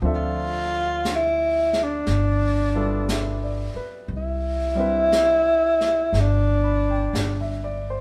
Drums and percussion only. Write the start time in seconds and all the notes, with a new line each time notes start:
0.04 brush sweep
1.05 brush sweep, snare, hi-hat pedal
1.73 snare
2.06 brush sweep, snare
3.09 brush sweep, snare, hi-hat pedal
4.10 brush sweep
5.12 brush sweep, snare, hi-hat pedal
5.81 snare
6.14 brush sweep, snare
7.15 brush sweep, snare, hi-hat pedal